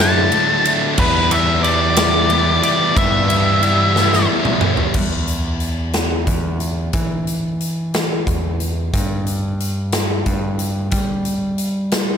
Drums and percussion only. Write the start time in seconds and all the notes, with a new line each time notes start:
0.00 snare
0.32 ride
0.65 ride
0.98 kick, crash
1.31 ride
1.64 ride
1.97 snare, ride
2.30 ride
2.63 ride
2.97 kick, ride
3.30 ride
3.63 ride
3.96 snare
4.13 snare
4.45 mid tom
4.61 mid tom
4.77 floor tom
4.94 kick, crash
5.28 closed hi-hat
5.60 closed hi-hat
5.93 snare, closed hi-hat
6.27 kick, closed hi-hat
6.60 closed hi-hat
6.93 kick, closed hi-hat
7.27 closed hi-hat
7.61 closed hi-hat
7.94 snare, closed hi-hat
8.27 kick, closed hi-hat
8.60 closed hi-hat
8.94 kick, closed hi-hat
9.27 closed hi-hat
9.60 closed hi-hat
9.92 snare, closed hi-hat
10.26 kick, closed hi-hat
10.59 closed hi-hat
10.91 kick, closed hi-hat
11.25 closed hi-hat
11.58 closed hi-hat
11.92 snare, closed hi-hat